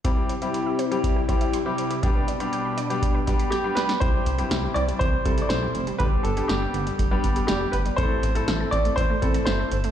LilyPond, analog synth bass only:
\new Staff \with { instrumentName = "Analog synth bass" } { \clef bass \time 4/4 \key c \major \tempo 4 = 121 r1 | r1 | c,8 c,8 c,8 c,8 c,8 c,8 b,,8 f,,8 | g,,8 g,,8 g,,8 g,,8 g,,8 g,,8 f,,8 g,,8 |
a,,8 a,,8 a,,8 a,,8 a,,8 a,,8 g,,8 g,,8 | }